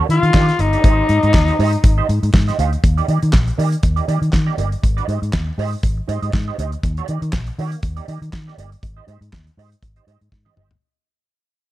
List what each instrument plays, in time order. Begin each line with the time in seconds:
0.09 fingered electric bass D#3, alto saxophone F4, muted clean electric guitar stroke, closed hi-hat
0.23 fingered electric bass D#3, muted clean electric guitar stroke, closed hi-hat
0.34 fingered electric bass D#3, clean electric guitar D4 G4 A#4 D5, kick, snare, clap
0.48 muted clean electric guitar stroke, snare, closed hi-hat
0.59 fingered electric bass G1, alto saxophone D#4, muted clean electric guitar stroke, closed hi-hat
0.72 clean electric guitar D4 G4 A#4 D5, closed hi-hat
0.84 fingered electric bass G#1, clean electric guitar D#4 G4 C5 D#5, kick, closed hi-hat
1.09 fingered electric bass G#2, muted clean electric guitar stroke, closed hi-hat
1.23 fingered electric bass G#2, clean electric guitar D#4 G4 C5 D#5, closed hi-hat
1.34 fingered electric bass D#2, kick, snare, clap
1.48 clean electric guitar D#4 G4 C5 D#5, closed hi-hat
1.59 fingered electric bass G#2, clean electric guitar D#4 G4 C5 D#5, open hi-hat
1.73 closed hi-hat
1.84 fingered electric bass G#1, muted clean electric guitar stroke, kick, closed hi-hat
1.98 clean electric guitar D#4 G4 C5 D#5
2.09 fingered electric bass G#2, muted clean electric guitar stroke, closed hi-hat
2.23 fingered electric bass G#2, muted clean electric guitar stroke, closed hi-hat
2.33 fingered electric bass G#2, muted clean electric guitar stroke, kick, snare, clap
2.48 clean electric guitar D#4 G4 C5 D#5, snare, closed hi-hat
2.59 fingered electric bass D2, clean electric guitar D#4 G4 C5 F5, closed hi-hat
2.72 muted clean electric guitar stroke, closed hi-hat
2.84 fingered electric bass D#2, muted clean electric guitar stroke, kick, closed hi-hat
2.97 clean electric guitar A#3 D#4 G4 D5, closed hi-hat
3.08 fingered electric bass D#3, clean electric guitar A#3 D#4 G4 D5, closed hi-hat
3.22 fingered electric bass D#3, muted clean electric guitar stroke, closed hi-hat
3.32 fingered electric bass A#1, muted clean electric guitar stroke, kick, snare, clap
3.47 muted clean electric guitar stroke, closed hi-hat
3.58 fingered electric bass D#3, clean electric guitar A#3 D#4 G4 D5, open hi-hat
3.71 muted clean electric guitar stroke, closed hi-hat
3.83 fingered electric bass D#2, muted clean electric guitar stroke, kick, closed hi-hat
3.96 clean electric guitar A#3 D#4 G4 D5, closed hi-hat
4.07 fingered electric bass D#3, clean electric guitar A#3 D#4 G4 D5, closed hi-hat
4.22 fingered electric bass D#3, muted clean electric guitar stroke, closed hi-hat
4.32 fingered electric bass D#3, muted clean electric guitar stroke, kick, snare, clap
4.46 clean electric guitar A#3 D#4 G4 D5
4.57 fingered electric bass G1, clean electric guitar A#3 D#4 G4 D5, closed hi-hat
4.71 muted clean electric guitar stroke, closed hi-hat
4.83 fingered electric bass G#1, muted clean electric guitar stroke, kick, closed hi-hat
4.97 clean electric guitar D#4 G4 C5 D#5, closed hi-hat
5.08 fingered electric bass G#2, clean electric guitar D#4 G4 C5 D#5, closed hi-hat
5.22 fingered electric bass G#2, muted clean electric guitar stroke, closed hi-hat
5.33 fingered electric bass D#2, muted clean electric guitar stroke, kick, snare, clap
5.47 muted clean electric guitar stroke
5.58 fingered electric bass G#2, clean electric guitar D#4 G4 C5 D#5, open hi-hat
5.73 closed hi-hat
5.83 fingered electric bass G#1, muted clean electric guitar stroke, kick, closed hi-hat
5.97 muted clean electric guitar stroke
6.08 fingered electric bass G#2, clean electric guitar D#4 G4 C5 D#5, closed hi-hat
6.22 fingered electric bass G#2, clean electric guitar D#4 G4 C5 D#5, closed hi-hat
6.33 fingered electric bass G#2, kick, snare, clap
6.48 clean electric guitar D#4 G4 C5 D#5
6.58 fingered electric bass D2, clean electric guitar D#4 G4 C5 D#5, closed hi-hat
6.72 muted clean electric guitar stroke, closed hi-hat
6.83 fingered electric bass D#2, muted clean electric guitar stroke, kick, closed hi-hat
6.97 clean electric guitar A#3 D#4 G4 D5, closed hi-hat
7.08 fingered electric bass D#3, clean electric guitar A#3 D#4 G4 D5, closed hi-hat
7.22 fingered electric bass D#3, closed hi-hat
7.32 fingered electric bass A#1, muted clean electric guitar stroke, kick, snare, clap
7.47 muted clean electric guitar stroke, closed hi-hat
7.58 fingered electric bass D#3, clean electric guitar A#3 D#4 G4 D5, open hi-hat
7.72 muted clean electric guitar stroke, closed hi-hat
7.83 fingered electric bass D#2, muted clean electric guitar stroke, kick, closed hi-hat
7.97 clean electric guitar A#3 D#4 G4 D5, closed hi-hat
8.08 fingered electric bass D#3, clean electric guitar A#3 D#4 G4 D5, closed hi-hat
8.22 fingered electric bass D#3, muted clean electric guitar stroke, closed hi-hat
8.33 fingered electric bass D#3, muted clean electric guitar stroke, kick, snare, clap
8.47 clean electric guitar A#3 D#4 G4 D5, snare
8.58 fingered electric bass G1, clean electric guitar A#3 D#4 G4 D5, closed hi-hat
8.72 closed hi-hat
8.83 fingered electric bass G#1, muted clean electric guitar stroke, kick, closed hi-hat
8.97 clean electric guitar D#4 G4 C5 D#5
9.07 fingered electric bass G#2, clean electric guitar D#4 G4 C5 D#5, closed hi-hat
9.21 fingered electric bass G#2, muted clean electric guitar stroke, closed hi-hat
9.32 fingered electric bass D#2, muted clean electric guitar stroke, kick, snare, clap
9.47 muted clean electric guitar stroke, closed hi-hat
9.57 fingered electric bass G#2, clean electric guitar D#4 G4 C5 D#5, open hi-hat
9.72 closed hi-hat
9.82 fingered electric bass G#1, muted clean electric guitar stroke, kick, closed hi-hat
9.96 clean electric guitar D#4 G4 C5 D#5, closed hi-hat
10.07 fingered electric bass G#2, clean electric guitar D#4 G4 C5 D#5, closed hi-hat
10.21 fingered electric bass G#2, closed hi-hat
10.31 fingered electric bass G#2, muted clean electric guitar stroke, kick, snare
10.45 clean electric guitar D#4 G4 C5 D#5, high tom
10.56 fingered electric bass G1, clean electric guitar D#4 G4 C5 D#5, mid tom
10.70 muted clean electric guitar stroke, floor tom